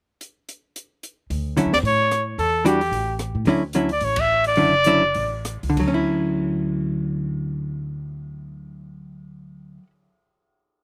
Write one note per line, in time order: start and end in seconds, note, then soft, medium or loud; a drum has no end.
0.21 closed hi-hat soft
0.49 closed hi-hat medium
0.76 closed hi-hat medium
1.03 closed hi-hat medium
1.30 1.63 D2 medium
1.30 open hi-hat soft
1.57 1.71 D3 soft
1.57 1.71 F#3 soft
1.57 1.71 C#4 soft
1.57 1.72 E4 soft
1.57 closed hi-hat soft
1.65 1.73 E2 medium
1.73 1.82 D#2 medium
1.73 1.78 D5 medium
1.73 snare soft
1.83 2.35 A2 medium
1.83 2.25 C#5 medium
1.83 open hi-hat soft
2.11 cross-stick medium
2.11 closed hi-hat soft
2.38 2.90 E2 medium
2.38 2.64 A4 medium
2.38 open hi-hat soft
2.65 2.79 E3 medium
2.65 2.79 G3 soft
2.65 2.80 D4 medium
2.65 2.80 F#4 medium
2.65 3.16 G4 medium
2.65 closed hi-hat medium
2.81 open hi-hat soft
2.91 3.32 A1 medium
2.91 open hi-hat soft
3.19 cross-stick medium
3.19 closed hi-hat soft
3.35 3.45 A2 medium
3.45 3.98 D2 medium
3.45 3.61 D3 medium
3.45 3.61 F#3 medium
3.45 3.62 C#4 medium
3.45 3.62 E4 medium
3.45 open hi-hat soft
3.73 3.89 D3 soft
3.73 3.89 F#3 soft
3.73 3.89 C#4 soft
3.73 3.90 E4 soft
3.73 closed hi-hat soft
3.89 4.06 D5 medium
3.89 open hi-hat soft
4.01 4.54 A1 medium
4.01 open hi-hat soft
4.05 4.22 C#5 medium
4.16 kick medium
4.16 ride medium
4.20 4.47 E5 loud
4.44 5.43 D5 loud
4.44 open hi-hat soft
4.56 5.13 F#1 medium
4.56 4.72 D3 soft
4.56 4.72 F#3 soft
4.56 4.73 C#4 soft
4.56 4.73 E4 soft
4.56 open hi-hat soft
4.84 5.02 D3 soft
4.84 5.02 F#3 medium
4.84 5.02 C#4 medium
4.84 5.02 E4 medium
4.84 closed hi-hat soft
5.14 5.61 A1 medium
5.14 open hi-hat soft
5.45 cross-stick medium
5.45 closed hi-hat soft
5.63 5.76 C#2 medium
5.63 open hi-hat soft
5.70 9.78 D3 soft
5.77 9.77 D2 medium
5.77 9.83 F#3 medium
5.77 kick medium
5.77 crash medium
5.88 9.87 C#4 medium
5.94 9.90 E4 medium